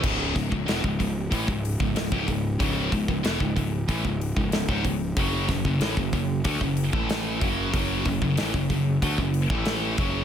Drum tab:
CC |x---------------|----------------|----------------|----------------|
HH |--o-o-o-o-o-o-o-|o-o-o-o-o-o-o-o-|o-o-o-o-o-o-o-o-|o-o-o-o-o-o-o-o-|
SD |--o-o-------o---|----o-------o---|--o-o-------o---|----o-------o---|
BD |o-oo-oo-oo-o-oo-|o-oo-oo-oo-o-oo-|o-oo-oo-oo-o--o-|o-oo-oo-oo-o--o-|